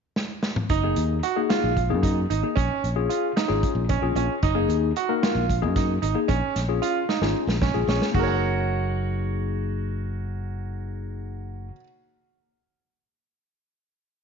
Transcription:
0.16 snare medium
0.43 snare medium
0.56 mid tom medium
0.69 0.93 F#1 medium
0.69 1.01 D#4 medium
0.69 kick medium
0.69 closed hi-hat medium
0.83 1.18 A#3 medium
0.83 1.18 D#4 medium
0.83 1.19 G#4 medium
0.96 1.20 D#2 medium
0.96 closed hi-hat medium
1.23 1.39 F#4 medium
1.23 closed hi-hat medium
1.36 1.71 A#3 medium
1.36 1.71 D#4 medium
1.36 1.71 G#4 medium
1.49 1.81 F4 medium
1.49 snare loud
1.49 closed hi-hat medium
1.64 1.92 A#1 medium
1.77 kick medium
1.77 closed hi-hat medium
1.89 2.25 F#2 medium
1.89 2.24 A#3 medium
1.89 2.25 D#4 medium
1.89 2.25 G#4 medium
2.03 2.18 D#4 medium
2.03 kick loud
2.03 closed hi-hat medium
2.30 2.42 G#1 medium
2.30 2.45 D#4 medium
2.30 closed hi-hat medium
2.43 2.56 A#3 medium
2.43 2.57 D#4 medium
2.43 2.57 G#4 medium
2.56 2.68 A#1 medium
2.56 2.87 C#4 medium
2.56 kick loud
2.56 closed hi-hat medium
2.84 3.07 A#1 medium
2.84 closed hi-hat soft
2.96 3.31 C#4 medium
2.96 3.31 F4 medium
2.96 3.31 G#4 medium
3.09 3.25 F4 medium
3.09 closed hi-hat medium
3.36 3.67 D#4 medium
3.36 snare medium
3.36 closed hi-hat medium
3.48 3.61 G#1 medium
3.48 3.84 C#4 medium
3.48 3.84 F4 medium
3.48 3.84 G#4 loud
3.63 kick medium
3.63 closed hi-hat medium
3.75 3.99 A#1 medium
3.89 4.05 C#4 medium
3.89 kick loud
3.89 closed hi-hat medium
4.02 4.14 A#1 medium
4.02 4.37 C#4 medium
4.02 4.37 F4 medium
4.02 4.37 G#4 medium
4.15 4.27 A#1 medium
4.15 4.32 C#4 medium
4.15 closed hi-hat medium
4.43 4.66 F#1 medium
4.43 4.74 D#4 medium
4.43 kick medium
4.43 closed hi-hat medium
4.55 4.90 A#3 medium
4.55 4.90 D#4 medium
4.55 4.90 G#4 loud
4.68 4.92 D#2 medium
4.68 closed hi-hat medium
4.96 5.12 F#4 medium
4.96 closed hi-hat medium
5.09 5.44 A#3 medium
5.09 5.44 D#4 medium
5.09 5.44 A#4 medium
5.23 5.53 F4 medium
5.23 snare loud
5.23 closed hi-hat medium
5.35 5.65 A#1 medium
5.49 kick medium
5.49 closed hi-hat medium
5.62 5.98 F#2 medium
5.62 5.97 A#3 medium
5.62 5.97 D#4 medium
5.62 5.97 G#4 loud
5.76 5.91 D#4 medium
5.76 kick loud
5.76 snare soft
5.76 closed hi-hat medium
6.02 6.14 G#1 medium
6.02 6.17 D#4 medium
6.02 closed hi-hat medium
6.15 6.28 A#3 medium
6.15 6.28 D#4 medium
6.15 6.29 G#4 medium
6.28 6.41 A#1 medium
6.28 6.59 C#4 medium
6.28 kick loud
6.28 closed hi-hat medium
6.56 6.79 A#1 medium
6.56 snare soft
6.56 closed hi-hat medium
6.68 7.03 C#4 medium
6.68 7.03 F4 medium
6.68 7.03 G#4 medium
6.82 6.97 F4 medium
6.82 closed hi-hat medium
7.09 7.39 D#4 medium
7.09 snare medium
7.21 7.33 G#1 medium
7.21 7.56 C#4 medium
7.21 7.56 F4 medium
7.21 7.56 G#4 medium
7.21 snare medium
7.47 7.71 A#1 medium
7.47 snare medium
7.62 7.77 C#4 medium
7.62 kick loud
7.62 snare medium
7.74 7.86 A#1 medium
7.74 8.09 C#4 medium
7.74 8.09 F4 medium
7.74 8.09 G#4 medium
7.87 7.99 A#1 medium
7.87 8.04 C#4 medium
7.87 snare medium
8.02 snare medium
8.12 11.70 F#1 medium
8.12 11.67 A#3 medium
8.12 11.69 D#4 medium
8.12 11.70 F#4 medium
8.12 kick medium
8.12 splash medium
8.16 11.72 G#4 medium
8.16 11.75 A#4 medium
8.23 11.79 C#5 medium
8.27 11.83 F#5 medium

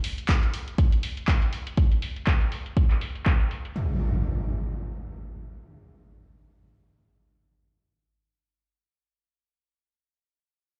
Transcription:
0.04 open hi-hat loud
0.18 closed hi-hat soft
0.29 kick loud
0.29 clap loud
0.29 closed hi-hat medium
0.43 closed hi-hat soft
0.54 open hi-hat loud
0.68 closed hi-hat soft
0.78 kick loud
0.78 closed hi-hat medium
0.92 closed hi-hat medium
1.03 open hi-hat loud
1.17 closed hi-hat soft
1.28 kick loud
1.28 clap loud
1.28 closed hi-hat medium
1.42 closed hi-hat soft
1.53 open hi-hat loud
1.67 closed hi-hat soft
1.77 kick loud
1.77 closed hi-hat medium
1.92 closed hi-hat soft
2.02 open hi-hat loud
2.16 closed hi-hat soft
2.27 kick loud
2.27 clap loud
2.27 closed hi-hat medium
2.41 closed hi-hat soft
2.52 open hi-hat loud
2.66 closed hi-hat soft
2.77 kick loud
2.77 closed hi-hat medium
2.91 clap soft
2.91 closed hi-hat soft
3.01 open hi-hat loud
3.15 closed hi-hat soft
3.26 kick loud
3.26 clap loud
3.26 closed hi-hat medium
3.40 closed hi-hat soft
3.51 open hi-hat loud
3.65 closed hi-hat soft
3.76 impact medium

